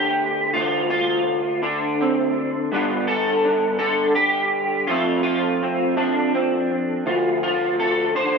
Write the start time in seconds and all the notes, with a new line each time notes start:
Already playing: D2 D3 D4 G4
0.54 D2 F4
0.90 F4
1.63 D3 D4
2.01 C4
2.72 G2 D3 B3 D4 F4
3.08 A4
3.45 D4
3.79 D3 A4
4.15 G4
4.87 F2 F3 A3 C4 F4
5.23 F4
5.63 C4
5.97 F3 D4
6.35 C4
7.06 D2 F4
7.43 F4
7.80 A4
8.15 D3 C5